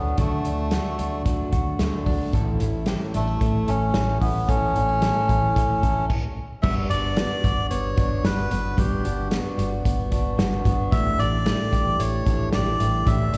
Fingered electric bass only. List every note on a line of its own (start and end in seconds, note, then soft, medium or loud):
0.00 0.13 D2 medium
0.18 0.40 D2 medium
0.45 0.78 D2 medium
0.99 1.21 D2 medium
1.26 1.48 D2 medium
1.53 1.75 D2 medium
1.79 2.02 D2 medium
2.06 2.28 D2 medium
2.34 2.56 A1 loud
2.61 2.94 A1 medium
3.15 3.37 A1 medium
3.41 3.63 A1 medium
3.68 3.90 A1 medium
3.95 4.17 A1 loud
4.21 4.44 A1 medium
4.48 4.71 A1 loud
4.76 5.09 A1 medium
5.29 5.51 A1 medium
5.56 5.78 A1 medium
5.83 6.05 A1 medium
6.64 6.86 G1 loud
6.90 7.23 G1 medium
7.44 7.66 G1 medium
7.71 7.93 G1 medium
7.98 8.20 G1 medium
8.24 8.46 G1 loud
8.51 8.73 G1 medium
8.78 9.00 G1 loud
9.05 9.38 G1 medium
9.58 9.80 G1 medium
9.85 10.07 G1 loud
10.12 10.34 G1 medium
10.38 10.61 G1 medium
10.65 10.87 G1 medium
10.92 11.14 A1 loud
11.19 11.52 A1 medium
11.73 11.95 A1 medium
11.99 12.21 A1 medium
12.27 12.49 A1 medium
12.53 12.75 A1 loud
12.80 13.02 A1 medium
13.07 13.29 A1 loud
13.33 13.37 A1 medium